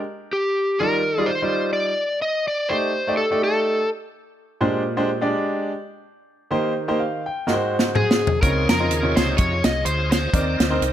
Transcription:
0.33 0.82 G4 medium
0.79 1.50 D#3 medium
0.79 1.00 G3 medium
0.79 1.00 D#4 medium
0.79 1.00 F4 medium
0.79 1.29 A#4 medium
0.79 1.00 D5 medium
1.18 1.28 G3 medium
1.18 1.28 D#4 medium
1.18 1.28 F4 medium
1.18 1.28 D5 medium
1.26 1.73 C5 medium
1.42 1.90 G3 medium
1.42 1.90 D#4 medium
1.42 1.90 F4 medium
1.42 1.90 D5 medium
1.73 2.18 D5 medium
2.22 2.47 D#5 medium
2.48 2.70 D5 medium
2.69 2.90 A3 medium
2.69 2.90 D#4 medium
2.69 2.90 G4 medium
2.69 3.14 C5 medium
2.69 2.91 D5 medium
3.07 3.18 A3 medium
3.07 3.18 D#4 medium
3.07 3.19 G4 medium
3.07 3.19 D5 medium
3.17 3.43 A4 medium
3.31 3.79 A3 medium
3.31 3.80 D#4 medium
3.31 3.80 G4 medium
3.31 3.80 D5 medium
3.44 3.89 A4 medium
4.61 5.31 A#2 medium
4.61 4.81 G#3 medium
4.61 4.81 D4 medium
4.61 4.81 G4 medium
4.61 4.81 C5 medium
4.97 5.08 G#3 medium
4.97 5.08 D4 medium
4.97 5.08 G4 medium
4.97 5.08 C5 medium
5.21 5.70 G#3 medium
5.21 5.70 D4 medium
5.21 5.70 G4 medium
5.21 5.70 D5 medium
6.51 7.22 D#3 medium
6.51 6.71 A#3 medium
6.51 6.72 D#4 medium
6.51 6.72 G4 medium
6.51 6.72 C5 medium
6.88 6.99 A#3 medium
6.88 6.99 D#4 medium
6.88 6.99 G4 medium
6.88 6.99 C5 medium
7.00 7.25 F5 medium
7.26 7.71 G5 medium
7.47 8.18 G#2 medium
7.47 8.26 G#3 medium
7.47 8.26 D#4 medium
7.47 8.26 F#4 medium
7.47 7.53 A#4 medium
7.47 snare soft
7.53 8.29 C5 medium
7.79 snare medium
7.95 8.41 G#4 medium
7.95 mid tom medium
8.11 snare medium
8.27 floor tom medium
8.42 8.65 C#2 medium
8.42 9.13 C#3 medium
8.42 8.63 C4 medium
8.42 8.63 D#4 medium
8.42 10.30 F4 soft
8.42 8.63 F4 medium
8.42 10.30 G#4 soft
8.42 8.68 A#4 medium
8.42 8.63 C#5 medium
8.42 10.30 C#5 medium
8.42 kick medium
8.42 closed hi-hat medium
8.49 10.33 D#5 medium
8.69 8.91 F2 medium
8.69 9.19 A#4 medium
8.69 snare medium
8.69 closed hi-hat medium
8.80 8.90 C4 medium
8.80 8.91 D#4 medium
8.80 8.91 F4 medium
8.80 8.91 D#5 medium
8.91 9.14 D#2 medium
8.91 closed hi-hat medium
9.02 9.51 C3 medium
9.02 9.52 D#4 medium
9.02 9.52 F4 medium
9.02 9.52 C#5 medium
9.16 9.35 C#2 medium
9.16 9.36 C5 medium
9.16 snare loud
9.16 closed hi-hat medium
9.37 9.61 F2 medium
9.37 9.63 C#5 medium
9.37 kick loud
9.37 closed hi-hat medium
9.64 9.83 C2 medium
9.64 9.84 D#5 medium
9.64 snare loud
9.64 closed hi-hat medium
9.85 10.26 D2 medium
9.85 10.10 C5 medium
9.85 closed hi-hat medium
10.11 10.93 C5 medium
10.11 snare loud
10.11 closed hi-hat medium
10.33 10.56 D#2 medium
10.33 10.93 D#3 medium
10.33 10.54 C4 medium
10.33 10.93 C4 medium
10.33 10.54 D#4 medium
10.33 10.93 D#4 medium
10.33 10.54 A#4 medium
10.33 10.93 A#4 soft
10.33 10.54 D5 medium
10.33 10.93 D5 medium
10.33 kick loud
10.33 closed hi-hat medium
10.60 10.78 D2 medium
10.60 snare loud
10.60 closed hi-hat medium
10.70 10.81 C4 medium
10.70 10.81 D#4 medium
10.70 10.81 A#4 medium
10.70 10.82 C5 medium
10.81 10.93 C2 medium
10.81 closed hi-hat medium

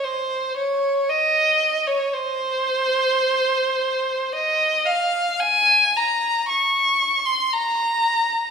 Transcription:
0.04 0.57 C5 medium
0.57 1.08 C#5 medium
1.10 1.88 D#5 medium
1.87 2.14 C#5 medium
2.14 4.32 C5 medium
4.32 4.87 D#5 medium
4.85 5.40 F5 medium
5.40 5.94 G#5 medium
5.97 6.49 A#5 medium
6.49 7.26 C#6 medium
7.25 7.52 C6 medium
7.53 8.51 A#5 medium

